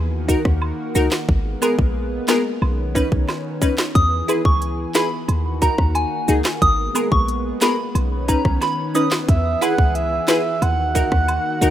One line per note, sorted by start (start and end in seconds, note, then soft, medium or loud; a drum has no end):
0.00 0.36 D#2 loud
0.00 1.27 D#3 medium
0.00 1.27 A#3 medium
0.00 1.27 F#4 medium
0.28 0.42 D#4 medium
0.28 0.42 F#4 medium
0.28 0.42 A#4 loud
0.28 kick medium
0.28 cabasa medium
0.45 0.73 D#2 loud
0.45 kick medium
0.45 cross-stick medium
0.62 high woodblock medium
0.95 1.09 C#2 medium
0.95 1.09 D#4 medium
0.95 1.09 F#4 medium
0.95 1.09 A#4 loud
0.95 cabasa medium
1.11 snare loud
1.11 clap medium
1.11 high woodblock medium
1.29 1.56 G#1 loud
1.29 2.61 G#3 medium
1.29 2.61 A#3 medium
1.29 2.61 B3 medium
1.29 kick loud
1.62 1.75 B3 medium
1.62 1.75 G#4 medium
1.62 1.76 A#4 loud
1.62 cabasa medium
1.62 high woodblock medium
1.79 2.20 A#1 medium
1.79 kick loud
2.28 2.42 B3 loud
2.28 2.42 G#4 medium
2.28 2.42 A#4 loud
2.28 snare loud
2.28 clap medium
2.28 cabasa medium
2.28 high woodblock medium
2.62 3.03 B1 loud
2.62 3.94 D#3 medium
2.62 5.26 B3 medium
2.62 3.94 C#4 medium
2.62 high woodblock medium
2.95 3.08 C#4 medium
2.95 3.09 D#4 medium
2.95 3.09 B4 loud
2.95 kick medium
2.95 cabasa medium
3.12 3.26 B1 medium
3.12 kick medium
3.28 snare medium
3.28 high woodblock medium
3.61 3.75 C#4 medium
3.61 3.75 D#4 medium
3.61 3.76 B4 loud
3.61 kick loud
3.61 cabasa medium
3.78 snare loud
3.78 clap medium
3.78 high woodblock medium
3.95 4.23 E2 loud
3.95 5.27 E3 medium
3.95 5.27 G#4 medium
3.95 4.22 D#6 loud
3.95 kick loud
3.95 closed hi-hat medium
4.28 4.42 E4 medium
4.28 4.42 G#4 medium
4.28 4.42 B4 medium
4.28 closed hi-hat medium
4.28 cabasa medium
4.28 high woodblock medium
4.45 4.86 C#2 medium
4.45 4.59 C#6 medium
4.45 kick loud
4.62 closed hi-hat medium
4.94 5.08 E4 medium
4.94 5.09 G#4 medium
4.94 5.09 B4 medium
4.94 5.09 B5 medium
4.94 snare loud
4.94 clap medium
4.94 closed hi-hat medium
4.94 cabasa medium
4.94 high woodblock medium
5.28 5.70 D#2 loud
5.28 6.61 D#3 medium
5.28 7.93 A#3 medium
5.28 6.61 F#4 medium
5.28 closed hi-hat medium
5.28 high woodblock medium
5.62 5.75 D#4 medium
5.62 5.75 F#4 medium
5.62 5.76 A#4 medium
5.62 5.75 A#5 medium
5.62 kick medium
5.62 closed hi-hat medium
5.62 cabasa medium
5.78 6.06 D#2 loud
5.78 kick medium
5.78 cross-stick medium
5.95 6.42 G#5 medium
5.95 closed hi-hat medium
5.95 high woodblock medium
6.28 6.42 C#2 loud
6.28 6.42 D#4 medium
6.28 6.42 F#4 medium
6.28 6.42 G#4 medium
6.28 closed hi-hat medium
6.28 cabasa medium
6.44 snare loud
6.44 clap medium
6.44 high woodblock medium
6.62 6.89 G#1 loud
6.62 7.94 G#3 medium
6.62 7.94 B3 medium
6.62 6.88 D#6 loud
6.62 kick loud
6.62 closed hi-hat medium
6.95 7.08 B3 medium
6.95 7.09 G#4 medium
6.95 7.09 A#4 medium
6.95 closed hi-hat medium
6.95 cabasa medium
6.95 high woodblock medium
7.12 7.53 A#1 medium
7.12 7.25 C#6 medium
7.12 kick loud
7.28 closed hi-hat medium
7.61 7.75 B3 medium
7.61 7.75 G#4 medium
7.61 7.76 A#4 medium
7.61 7.75 B5 medium
7.61 snare loud
7.61 clap medium
7.61 closed hi-hat medium
7.61 cabasa medium
7.61 high woodblock medium
7.95 8.36 B1 loud
7.95 9.27 D#3 medium
7.95 10.59 B3 medium
7.95 9.27 C#4 medium
7.95 closed hi-hat medium
7.95 high woodblock medium
8.28 8.42 C#4 medium
8.28 8.42 D#4 medium
8.28 8.42 B4 medium
8.28 8.42 A#5 medium
8.28 kick medium
8.28 closed hi-hat medium
8.28 cabasa medium
8.45 8.59 B1 medium
8.45 kick medium
8.45 cross-stick medium
8.61 8.75 B5 medium
8.61 snare medium
8.61 closed hi-hat medium
8.61 high woodblock medium
8.95 9.08 C#4 medium
8.95 9.09 D#4 medium
8.95 9.09 B4 medium
8.95 9.08 D#6 medium
8.95 closed hi-hat medium
8.95 cabasa medium
9.11 snare loud
9.11 clap medium
9.11 high woodblock medium
9.28 9.56 E2 loud
9.28 10.61 E3 medium
9.28 10.60 G#4 medium
9.28 9.63 E5 loud
9.28 kick loud
9.28 closed hi-hat medium
9.61 9.75 E4 medium
9.61 9.75 G#4 medium
9.61 9.76 B4 loud
9.61 9.95 F#5 loud
9.61 closed hi-hat medium
9.61 cabasa medium
9.61 high woodblock medium
9.78 10.20 C#2 medium
9.78 kick loud
9.95 10.26 E5 loud
9.95 closed hi-hat medium
10.28 10.42 E4 medium
10.28 10.42 G#4 medium
10.28 10.42 B4 loud
10.28 10.63 E5 loud
10.28 snare loud
10.28 clap medium
10.28 closed hi-hat medium
10.28 cabasa medium
10.28 high woodblock medium
10.62 11.03 D#2 loud
10.62 11.70 D#3 medium
10.62 11.70 A#3 medium
10.62 11.70 F#4 medium
10.62 10.95 F#5 loud
10.62 closed hi-hat medium
10.62 high woodblock medium
10.95 11.08 D#4 medium
10.95 11.09 F#4 medium
10.95 11.09 A#4 loud
10.95 11.70 F#5 loud
10.95 kick medium
10.95 closed hi-hat medium
10.95 cabasa medium
11.12 11.39 D#2 loud
11.12 kick medium
11.12 cross-stick medium
11.28 closed hi-hat medium
11.28 high woodblock medium
11.61 11.70 C#2 loud
11.61 11.70 D#4 medium
11.61 11.70 F#4 medium
11.61 11.70 A#4 loud
11.61 closed hi-hat medium
11.61 cabasa medium